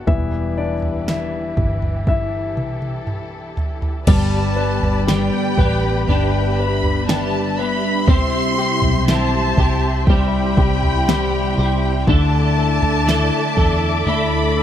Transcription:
Already playing: grand piano F#5
0.07 fingered electric bass E1, grand piano E3 G3 B3 E4 E5, string section E3 E4 G4 B4, kick, floor tom
0.58 grand piano D4 D5
0.82 floor tom
1.08 grand piano E4 E5, snare
1.57 fingered electric bass G1, kick, floor tom
1.82 floor tom
2.07 grand piano E4 E5, string section A4, kick, high tom
2.57 fingered electric bass B1, mid tom
2.82 mid tom
3.07 mid tom
3.57 floor tom
3.82 floor tom
4.07 fingered electric bass G1, clean electric guitar G2 D3 G3 B3 D4 G4, grand piano G3, string section G4 B4 D5 B5, violin section A5, kick, floor tom, crash
4.56 grand piano B4
4.83 fingered electric bass G1, floor tom
5.07 clean electric guitar G2 D3 G3 B3 D4 G4, grand piano G4, violin section G5, snare
5.58 fingered electric bass A1, clean electric guitar G3 B3 D4 G4, grand piano B4, kick, floor tom
6.07 fingered electric bass G1, clean electric guitar G3 B3 D4, grand piano D4, string section E5, violin section G5, floor tom
6.11 clean electric guitar G4
6.57 grand piano B4, violin section B5
6.83 floor tom
7.07 clean electric guitar G2 D3 G3 B3 D4 G4, grand piano D4, violin section A5, snare
7.57 clean electric guitar B3 D4 G4, grand piano B4, violin section B5
7.61 clean electric guitar G3
8.07 fingered electric bass C2, clean electric guitar C3 G3 C4 E4 G4, grand piano C4, string section G4 C5 C6, violin section C6, kick, floor tom
8.58 grand piano G4
8.82 fingered electric bass B1, floor tom
9.08 clean electric guitar G3 C4 E4 G4, grand piano E4, violin section A5, snare
9.57 fingered electric bass C2, clean electric guitar C4 E4 G4, grand piano G4, kick, floor tom
10.06 clean electric guitar G3 C4, grand piano G3, violin section G5, string section B5, kick, floor tom
10.10 clean electric guitar E4 G4
10.57 fingered electric bass C2, grand piano G4, kick
10.83 floor tom
11.08 clean electric guitar C3 G3 C4 E4 G4, grand piano G3, snare
11.57 fingered electric bass C2, clean electric guitar C4 E4 G4, grand piano G4
12.06 fingered electric bass D2, clean electric guitar D3 A3 E4 A4, grand piano D3, string section A4 D5 E5 D6, violin section A5, kick, floor tom
12.58 grand piano A4
12.82 fingered electric bass D2, floor tom
13.07 clean electric guitar D3 A3 E4 A4, grand piano E4, snare
13.56 fingered electric bass E2, clean electric guitar A3 E4 A4, grand piano A4, kick, floor tom
14.06 fingered electric bass D2, clean electric guitar D3 A3 E4 A4, grand piano A3, violin section B5, floor tom
14.57 grand piano A4

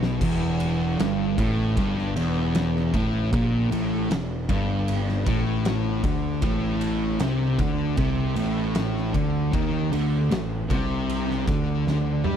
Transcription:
Already playing: picked electric bass B1, distorted electric guitar B2
0.03 snare
0.21 picked electric bass E1, distorted electric guitar E2, kick, crash
0.60 ride
0.99 picked electric bass G1, distorted electric guitar G2, snare, ride
1.38 picked electric bass A1, distorted electric guitar A2, kick, ride
1.76 picked electric bass G1, distorted electric guitar G2, kick, ride
1.98 snare
2.16 picked electric bass E1, distorted electric guitar E2, ride
2.55 snare, ride
2.76 snare
2.93 picked electric bass A1, distorted electric guitar A2, kick, ride
3.32 picked electric bass A#1, distorted electric guitar A#2, kick, ride
3.72 picked electric bass A1, distorted electric guitar A2, ride
4.10 picked electric bass E1, distorted electric guitar E2, snare, ride
4.49 picked electric bass G1, distorted electric guitar G2, kick, ride
4.88 ride
5.08 snare
5.26 picked electric bass A1, distorted electric guitar A2, kick, ride
5.65 snare, ride
6.03 picked electric bass D2, distorted electric guitar D3, kick, ride
6.42 picked electric bass A1, distorted electric guitar A2, kick, ride
6.81 ride
7.19 picked electric bass C2, distorted electric guitar C3, snare, ride
7.59 picked electric bass D2, distorted electric guitar D3, kick, ride
7.97 picked electric bass C2, distorted electric guitar C3, kick, ride
8.36 picked electric bass A1, distorted electric guitar A2, ride
8.75 snare, ride
8.96 snare
9.14 picked electric bass D2, distorted electric guitar D3, kick, ride
9.53 picked electric bass D#2, distorted electric guitar D#3, kick, ride
9.92 picked electric bass D2, distorted electric guitar D3, ride
10.30 picked electric bass A1, distorted electric guitar A2, snare, ride
10.69 picked electric bass C2, distorted electric guitar C3, kick, ride
11.09 ride
11.30 snare
11.47 picked electric bass D2, distorted electric guitar D3, kick, snare, ride
11.87 snare
12.24 picked electric bass G2, distorted electric guitar G3, mid tom

